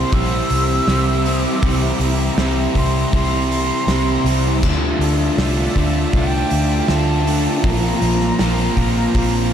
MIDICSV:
0, 0, Header, 1, 8, 480
1, 0, Start_track
1, 0, Tempo, 751880
1, 1039, Time_signature, 4, 2, 24, 8
1, 6086, End_track
2, 0, Start_track
2, 0, Title_t, "Flute"
2, 0, Program_c, 0, 73
2, 0, Note_on_c, 0, 84, 96
2, 85, Note_on_c, 0, 88, 114
2, 94, Note_off_c, 0, 84, 0
2, 811, Note_on_c, 0, 86, 87
2, 820, Note_off_c, 0, 88, 0
2, 1526, Note_off_c, 0, 86, 0
2, 1769, Note_on_c, 0, 84, 102
2, 1988, Note_off_c, 0, 84, 0
2, 2001, Note_on_c, 0, 84, 120
2, 2695, Note_off_c, 0, 84, 0
2, 3441, Note_on_c, 0, 76, 82
2, 3903, Note_on_c, 0, 79, 103
2, 3912, Note_off_c, 0, 76, 0
2, 4390, Note_on_c, 0, 81, 111
2, 4399, Note_off_c, 0, 79, 0
2, 4865, Note_on_c, 0, 82, 103
2, 4875, Note_off_c, 0, 81, 0
2, 6086, Note_off_c, 0, 82, 0
2, 6086, End_track
3, 0, Start_track
3, 0, Title_t, "Analog synth pad"
3, 0, Program_c, 1, 89
3, 0, Note_on_c, 1, 67, 75
3, 0, Note_on_c, 1, 72, 71
3, 0, Note_on_c, 1, 76, 72
3, 0, Note_on_c, 1, 84, 80
3, 1010, Note_off_c, 1, 84, 0
3, 1039, Note_on_c, 1, 82, 88
3, 2933, Note_off_c, 1, 72, 0
3, 2941, Note_off_c, 1, 82, 0
3, 2942, Note_off_c, 1, 76, 0
3, 2945, Note_off_c, 1, 67, 0
3, 2957, Note_on_c, 1, 76, 76
3, 2959, Note_on_c, 1, 74, 73
3, 2960, Note_on_c, 1, 65, 80
3, 2965, Note_on_c, 1, 81, 84
3, 4859, Note_off_c, 1, 76, 0
3, 4860, Note_off_c, 1, 74, 0
3, 4861, Note_off_c, 1, 65, 0
3, 4863, Note_off_c, 1, 81, 0
3, 4878, Note_on_c, 1, 65, 81
3, 4882, Note_on_c, 1, 72, 70
3, 4884, Note_on_c, 1, 70, 68
3, 4890, Note_on_c, 1, 82, 93
3, 6086, Note_off_c, 1, 65, 0
3, 6086, Note_off_c, 1, 70, 0
3, 6086, Note_off_c, 1, 72, 0
3, 6086, Note_off_c, 1, 82, 0
3, 6086, End_track
4, 0, Start_track
4, 0, Title_t, "Overdriven electric guitar"
4, 0, Program_c, 2, 29
4, 0, Note_on_c, 2, 48, 97
4, 0, Note_on_c, 2, 52, 76
4, 0, Note_on_c, 2, 55, 77
4, 0, Note_on_c, 2, 60, 76
4, 0, Note_on_c, 2, 64, 80
4, 77, Note_off_c, 2, 48, 0
4, 78, Note_off_c, 2, 55, 0
4, 79, Note_off_c, 2, 52, 0
4, 79, Note_on_c, 2, 48, 91
4, 80, Note_off_c, 2, 60, 0
4, 81, Note_on_c, 2, 52, 103
4, 85, Note_on_c, 2, 55, 103
4, 86, Note_off_c, 2, 64, 0
4, 87, Note_on_c, 2, 60, 102
4, 89, Note_on_c, 2, 64, 95
4, 557, Note_off_c, 2, 55, 0
4, 558, Note_off_c, 2, 52, 0
4, 559, Note_off_c, 2, 60, 0
4, 560, Note_on_c, 2, 52, 78
4, 565, Note_on_c, 2, 55, 86
4, 567, Note_on_c, 2, 60, 93
4, 570, Note_off_c, 2, 64, 0
4, 573, Note_on_c, 2, 64, 91
4, 799, Note_off_c, 2, 48, 0
4, 1038, Note_off_c, 2, 52, 0
4, 1038, Note_off_c, 2, 55, 0
4, 1039, Note_off_c, 2, 60, 0
4, 1039, Note_on_c, 2, 48, 91
4, 1040, Note_on_c, 2, 52, 107
4, 1045, Note_off_c, 2, 64, 0
4, 1046, Note_on_c, 2, 55, 102
4, 1047, Note_on_c, 2, 60, 103
4, 1047, Note_on_c, 2, 64, 112
4, 1285, Note_off_c, 2, 60, 0
4, 1285, Note_off_c, 2, 64, 0
4, 1287, Note_on_c, 2, 64, 72
4, 1288, Note_off_c, 2, 55, 0
4, 1293, Note_on_c, 2, 60, 59
4, 1296, Note_on_c, 2, 55, 56
4, 1520, Note_off_c, 2, 48, 0
4, 1520, Note_off_c, 2, 52, 0
4, 1520, Note_off_c, 2, 55, 0
4, 1523, Note_off_c, 2, 60, 0
4, 1523, Note_on_c, 2, 52, 74
4, 1527, Note_on_c, 2, 55, 88
4, 1530, Note_off_c, 2, 64, 0
4, 1530, Note_on_c, 2, 60, 81
4, 1533, Note_on_c, 2, 64, 84
4, 1996, Note_off_c, 2, 55, 0
4, 1997, Note_off_c, 2, 52, 0
4, 2000, Note_on_c, 2, 48, 88
4, 2001, Note_off_c, 2, 60, 0
4, 2001, Note_off_c, 2, 64, 0
4, 2004, Note_on_c, 2, 55, 90
4, 2005, Note_on_c, 2, 52, 97
4, 2008, Note_on_c, 2, 60, 103
4, 2009, Note_on_c, 2, 64, 101
4, 2475, Note_off_c, 2, 52, 0
4, 2479, Note_off_c, 2, 55, 0
4, 2482, Note_on_c, 2, 52, 77
4, 2486, Note_off_c, 2, 64, 0
4, 2487, Note_off_c, 2, 60, 0
4, 2487, Note_on_c, 2, 55, 85
4, 2493, Note_on_c, 2, 64, 94
4, 2495, Note_on_c, 2, 60, 82
4, 2721, Note_off_c, 2, 48, 0
4, 2947, Note_off_c, 2, 52, 0
4, 2949, Note_off_c, 2, 55, 0
4, 2953, Note_off_c, 2, 60, 0
4, 2953, Note_off_c, 2, 64, 0
4, 2964, Note_on_c, 2, 50, 87
4, 2968, Note_on_c, 2, 57, 94
4, 2971, Note_on_c, 2, 62, 106
4, 2978, Note_on_c, 2, 65, 104
4, 3206, Note_off_c, 2, 62, 0
4, 3206, Note_off_c, 2, 65, 0
4, 3209, Note_on_c, 2, 65, 77
4, 3213, Note_off_c, 2, 57, 0
4, 3214, Note_on_c, 2, 62, 64
4, 3220, Note_on_c, 2, 57, 58
4, 3437, Note_off_c, 2, 50, 0
4, 3442, Note_off_c, 2, 57, 0
4, 3444, Note_off_c, 2, 62, 0
4, 3445, Note_on_c, 2, 50, 83
4, 3450, Note_on_c, 2, 57, 84
4, 3452, Note_off_c, 2, 65, 0
4, 3452, Note_on_c, 2, 62, 80
4, 3455, Note_on_c, 2, 65, 87
4, 3910, Note_off_c, 2, 50, 0
4, 3917, Note_off_c, 2, 57, 0
4, 3917, Note_on_c, 2, 50, 96
4, 3919, Note_off_c, 2, 62, 0
4, 3925, Note_on_c, 2, 57, 102
4, 3927, Note_on_c, 2, 62, 92
4, 3928, Note_off_c, 2, 65, 0
4, 3930, Note_on_c, 2, 65, 101
4, 4390, Note_off_c, 2, 50, 0
4, 4396, Note_off_c, 2, 57, 0
4, 4396, Note_off_c, 2, 62, 0
4, 4398, Note_on_c, 2, 50, 84
4, 4404, Note_off_c, 2, 65, 0
4, 4404, Note_on_c, 2, 57, 91
4, 4404, Note_on_c, 2, 62, 85
4, 4407, Note_on_c, 2, 65, 97
4, 4865, Note_off_c, 2, 50, 0
4, 4868, Note_off_c, 2, 57, 0
4, 4868, Note_off_c, 2, 62, 0
4, 4874, Note_on_c, 2, 46, 93
4, 4876, Note_on_c, 2, 53, 104
4, 4878, Note_on_c, 2, 58, 105
4, 4880, Note_on_c, 2, 60, 102
4, 4881, Note_off_c, 2, 65, 0
4, 4883, Note_on_c, 2, 65, 94
4, 5107, Note_off_c, 2, 65, 0
4, 5113, Note_off_c, 2, 60, 0
4, 5114, Note_on_c, 2, 65, 62
4, 5116, Note_off_c, 2, 58, 0
4, 5121, Note_on_c, 2, 60, 55
4, 5124, Note_on_c, 2, 58, 58
4, 5348, Note_off_c, 2, 53, 0
4, 5350, Note_off_c, 2, 58, 0
4, 5354, Note_off_c, 2, 60, 0
4, 5355, Note_on_c, 2, 53, 87
4, 5357, Note_off_c, 2, 46, 0
4, 5357, Note_on_c, 2, 58, 87
4, 5359, Note_off_c, 2, 65, 0
4, 5362, Note_on_c, 2, 60, 86
4, 5366, Note_on_c, 2, 65, 75
4, 5836, Note_off_c, 2, 53, 0
4, 5837, Note_off_c, 2, 58, 0
4, 5838, Note_on_c, 2, 46, 87
4, 5842, Note_off_c, 2, 60, 0
4, 5843, Note_off_c, 2, 65, 0
4, 5844, Note_on_c, 2, 53, 85
4, 5844, Note_on_c, 2, 58, 86
4, 5849, Note_on_c, 2, 60, 101
4, 5851, Note_on_c, 2, 65, 104
4, 6086, Note_off_c, 2, 46, 0
4, 6086, Note_off_c, 2, 53, 0
4, 6086, Note_off_c, 2, 58, 0
4, 6086, Note_off_c, 2, 60, 0
4, 6086, Note_off_c, 2, 65, 0
4, 6086, End_track
5, 0, Start_track
5, 0, Title_t, "Overdriven electric guitar"
5, 0, Program_c, 3, 29
5, 0, Note_on_c, 3, 48, 78
5, 0, Note_on_c, 3, 55, 85
5, 0, Note_on_c, 3, 60, 88
5, 80, Note_off_c, 3, 48, 0
5, 84, Note_off_c, 3, 55, 0
5, 89, Note_off_c, 3, 60, 0
5, 563, Note_on_c, 3, 48, 84
5, 800, Note_off_c, 3, 48, 0
5, 807, Note_on_c, 3, 48, 78
5, 809, Note_on_c, 3, 55, 87
5, 814, Note_on_c, 3, 60, 92
5, 1046, Note_off_c, 3, 48, 0
5, 1048, Note_off_c, 3, 55, 0
5, 1052, Note_off_c, 3, 60, 0
5, 1528, Note_on_c, 3, 48, 78
5, 1754, Note_off_c, 3, 48, 0
5, 1762, Note_on_c, 3, 48, 73
5, 1764, Note_on_c, 3, 55, 88
5, 1767, Note_on_c, 3, 60, 98
5, 1997, Note_off_c, 3, 48, 0
5, 2002, Note_off_c, 3, 55, 0
5, 2006, Note_off_c, 3, 60, 0
5, 2486, Note_on_c, 3, 48, 81
5, 2717, Note_off_c, 3, 48, 0
5, 2724, Note_on_c, 3, 48, 87
5, 2726, Note_on_c, 3, 55, 88
5, 2728, Note_on_c, 3, 60, 89
5, 2948, Note_off_c, 3, 48, 0
5, 2949, Note_off_c, 3, 55, 0
5, 2950, Note_off_c, 3, 60, 0
5, 3685, Note_on_c, 3, 50, 94
5, 3687, Note_on_c, 3, 57, 89
5, 3692, Note_on_c, 3, 62, 87
5, 3914, Note_off_c, 3, 50, 0
5, 3916, Note_off_c, 3, 57, 0
5, 3918, Note_off_c, 3, 62, 0
5, 4644, Note_on_c, 3, 50, 85
5, 4650, Note_on_c, 3, 57, 95
5, 4651, Note_on_c, 3, 62, 96
5, 4868, Note_off_c, 3, 50, 0
5, 4871, Note_off_c, 3, 57, 0
5, 4871, Note_off_c, 3, 62, 0
5, 5365, Note_on_c, 3, 46, 72
5, 5593, Note_off_c, 3, 46, 0
5, 5601, Note_on_c, 3, 46, 81
5, 5603, Note_on_c, 3, 53, 80
5, 5605, Note_on_c, 3, 58, 88
5, 5832, Note_off_c, 3, 46, 0
5, 5834, Note_off_c, 3, 53, 0
5, 5837, Note_off_c, 3, 58, 0
5, 6086, End_track
6, 0, Start_track
6, 0, Title_t, "Distorted electric guitar"
6, 0, Program_c, 4, 30
6, 0, Note_on_c, 4, 48, 66
6, 553, Note_off_c, 4, 48, 0
6, 4624, Note_on_c, 4, 62, 68
6, 4858, Note_off_c, 4, 62, 0
6, 5130, Note_on_c, 4, 53, 67
6, 5354, Note_off_c, 4, 53, 0
6, 6086, End_track
7, 0, Start_track
7, 0, Title_t, "Fingered electric bass"
7, 0, Program_c, 5, 33
7, 78, Note_on_c, 5, 34, 81
7, 260, Note_off_c, 5, 34, 0
7, 322, Note_on_c, 5, 36, 86
7, 503, Note_off_c, 5, 36, 0
7, 557, Note_on_c, 5, 36, 99
7, 922, Note_off_c, 5, 36, 0
7, 1038, Note_on_c, 5, 36, 93
7, 1220, Note_off_c, 5, 36, 0
7, 1272, Note_on_c, 5, 36, 86
7, 1457, Note_off_c, 5, 36, 0
7, 1513, Note_on_c, 5, 36, 104
7, 1698, Note_off_c, 5, 36, 0
7, 1755, Note_on_c, 5, 36, 86
7, 1939, Note_off_c, 5, 36, 0
7, 1998, Note_on_c, 5, 36, 89
7, 2363, Note_off_c, 5, 36, 0
7, 2471, Note_on_c, 5, 36, 82
7, 2657, Note_off_c, 5, 36, 0
7, 2709, Note_on_c, 5, 36, 97
7, 2956, Note_off_c, 5, 36, 0
7, 2956, Note_on_c, 5, 38, 81
7, 3140, Note_off_c, 5, 38, 0
7, 3186, Note_on_c, 5, 38, 74
7, 3374, Note_off_c, 5, 38, 0
7, 3432, Note_on_c, 5, 36, 104
7, 3618, Note_off_c, 5, 36, 0
7, 3675, Note_on_c, 5, 38, 92
7, 3859, Note_off_c, 5, 38, 0
7, 3915, Note_on_c, 5, 36, 88
7, 4099, Note_off_c, 5, 36, 0
7, 4159, Note_on_c, 5, 38, 86
7, 4342, Note_off_c, 5, 38, 0
7, 4398, Note_on_c, 5, 38, 88
7, 4763, Note_off_c, 5, 38, 0
7, 4874, Note_on_c, 5, 34, 92
7, 5058, Note_off_c, 5, 34, 0
7, 5117, Note_on_c, 5, 34, 81
7, 5300, Note_off_c, 5, 34, 0
7, 5360, Note_on_c, 5, 34, 96
7, 5542, Note_off_c, 5, 34, 0
7, 5596, Note_on_c, 5, 34, 87
7, 5779, Note_off_c, 5, 34, 0
7, 5837, Note_on_c, 5, 34, 93
7, 6086, Note_off_c, 5, 34, 0
7, 6086, End_track
8, 0, Start_track
8, 0, Title_t, "Drums"
8, 78, Note_on_c, 9, 46, 83
8, 80, Note_on_c, 9, 36, 121
8, 141, Note_off_c, 9, 46, 0
8, 144, Note_off_c, 9, 36, 0
8, 318, Note_on_c, 9, 46, 64
8, 382, Note_off_c, 9, 46, 0
8, 560, Note_on_c, 9, 38, 94
8, 560, Note_on_c, 9, 46, 76
8, 624, Note_off_c, 9, 38, 0
8, 624, Note_off_c, 9, 46, 0
8, 803, Note_on_c, 9, 46, 61
8, 866, Note_off_c, 9, 46, 0
8, 1037, Note_on_c, 9, 46, 96
8, 1039, Note_on_c, 9, 36, 127
8, 1101, Note_off_c, 9, 46, 0
8, 1103, Note_off_c, 9, 36, 0
8, 1279, Note_on_c, 9, 46, 62
8, 1343, Note_off_c, 9, 46, 0
8, 1518, Note_on_c, 9, 38, 114
8, 1518, Note_on_c, 9, 46, 87
8, 1582, Note_off_c, 9, 38, 0
8, 1582, Note_off_c, 9, 46, 0
8, 1758, Note_on_c, 9, 36, 76
8, 1759, Note_on_c, 9, 46, 63
8, 1822, Note_off_c, 9, 36, 0
8, 1823, Note_off_c, 9, 46, 0
8, 1998, Note_on_c, 9, 46, 83
8, 1999, Note_on_c, 9, 36, 109
8, 2062, Note_off_c, 9, 46, 0
8, 2063, Note_off_c, 9, 36, 0
8, 2244, Note_on_c, 9, 46, 58
8, 2307, Note_off_c, 9, 46, 0
8, 2479, Note_on_c, 9, 38, 98
8, 2479, Note_on_c, 9, 46, 70
8, 2543, Note_off_c, 9, 38, 0
8, 2543, Note_off_c, 9, 46, 0
8, 2720, Note_on_c, 9, 46, 65
8, 2784, Note_off_c, 9, 46, 0
8, 2956, Note_on_c, 9, 49, 98
8, 2957, Note_on_c, 9, 36, 120
8, 3020, Note_off_c, 9, 36, 0
8, 3020, Note_off_c, 9, 49, 0
8, 3199, Note_on_c, 9, 46, 56
8, 3263, Note_off_c, 9, 46, 0
8, 3438, Note_on_c, 9, 38, 123
8, 3438, Note_on_c, 9, 46, 84
8, 3502, Note_off_c, 9, 38, 0
8, 3502, Note_off_c, 9, 46, 0
8, 3676, Note_on_c, 9, 36, 76
8, 3678, Note_on_c, 9, 46, 58
8, 3740, Note_off_c, 9, 36, 0
8, 3742, Note_off_c, 9, 46, 0
8, 3914, Note_on_c, 9, 46, 78
8, 3916, Note_on_c, 9, 36, 116
8, 3978, Note_off_c, 9, 46, 0
8, 3980, Note_off_c, 9, 36, 0
8, 4153, Note_on_c, 9, 46, 57
8, 4217, Note_off_c, 9, 46, 0
8, 4395, Note_on_c, 9, 38, 100
8, 4395, Note_on_c, 9, 46, 76
8, 4458, Note_off_c, 9, 38, 0
8, 4458, Note_off_c, 9, 46, 0
8, 4641, Note_on_c, 9, 46, 66
8, 4705, Note_off_c, 9, 46, 0
8, 4876, Note_on_c, 9, 46, 94
8, 4877, Note_on_c, 9, 36, 119
8, 4939, Note_off_c, 9, 46, 0
8, 4941, Note_off_c, 9, 36, 0
8, 5119, Note_on_c, 9, 46, 55
8, 5183, Note_off_c, 9, 46, 0
8, 5236, Note_on_c, 9, 38, 33
8, 5300, Note_off_c, 9, 38, 0
8, 5358, Note_on_c, 9, 38, 112
8, 5358, Note_on_c, 9, 46, 85
8, 5422, Note_off_c, 9, 38, 0
8, 5422, Note_off_c, 9, 46, 0
8, 5599, Note_on_c, 9, 36, 79
8, 5600, Note_on_c, 9, 46, 62
8, 5663, Note_off_c, 9, 36, 0
8, 5664, Note_off_c, 9, 46, 0
8, 5841, Note_on_c, 9, 36, 113
8, 5846, Note_on_c, 9, 46, 87
8, 5904, Note_off_c, 9, 36, 0
8, 5910, Note_off_c, 9, 46, 0
8, 6086, End_track
0, 0, End_of_file